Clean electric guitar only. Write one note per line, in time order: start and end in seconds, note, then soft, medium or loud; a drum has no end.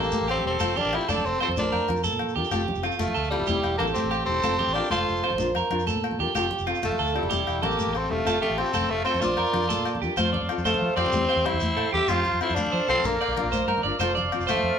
0.00 0.27 A4 medium
0.28 0.59 G4 medium
0.60 0.76 A4 medium
0.76 1.07 G4 medium
1.08 1.39 A4 medium
1.40 1.71 C5 medium
1.72 2.03 A#4 medium
2.04 2.34 A4 medium
2.36 2.51 G4 medium
2.52 2.82 G4 medium
2.84 3.14 F4 medium
3.14 3.46 A4 medium
3.47 3.78 G4 medium
3.79 4.10 A4 medium
4.11 4.42 G4 medium
4.44 4.59 A4 medium
4.59 4.90 G4 medium
4.91 5.22 A4 medium
5.24 5.54 C5 medium
5.56 5.86 A#4 medium
5.87 6.18 A4 medium
6.20 6.34 G4 medium
6.35 6.66 G4 medium
6.67 6.97 F4 medium
6.99 7.29 A4 medium
7.30 7.61 G4 medium
7.62 7.93 A4 medium
7.93 muted clean electric guitar stroke medium
8.27 8.42 A4 medium
8.42 8.73 G4 medium
8.74 9.05 A4 medium
9.06 9.37 C5 medium
9.38 9.68 A#4 medium
9.69 10.00 A4 medium
10.02 10.17 G4 medium
10.17 10.32 C5 loud
10.33 10.64 D5 medium
10.65 10.96 C5 medium
10.97 11.27 D5 medium
11.29 11.59 C5 medium
11.77 11.92 A4 medium
11.92 12.23 G4 medium
12.72 12.88 C5 medium
12.88 13.19 A4 medium
13.21 13.51 D5 medium
13.52 13.67 C5 medium
13.68 13.83 A#4 medium
13.83 13.99 D5 medium
14.00 14.14 C5 medium
14.15 14.46 D5 medium
14.47 14.77 C5 medium